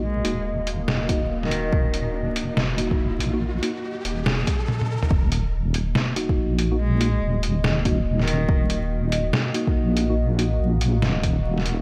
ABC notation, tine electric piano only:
X:1
M:4/4
L:1/16
Q:"Swing 16ths" 1/4=142
K:Ebm
V:1 name="Tine electric piano"
z2 [B,EG] z6 z [B,EG] z4 z | z8 z2 [B,EG]4- [B,EG] [B,EG] | z2 [B,EG] z12 z | z8 z2 [B,EG]4- [B,EG] [B,EG] |
z2 [B,EG] z6 z [B,EG] z4 z | z8 z2 [B,EG]4- [B,EG] [B,EG] | z2 [B,EG] z12 z |]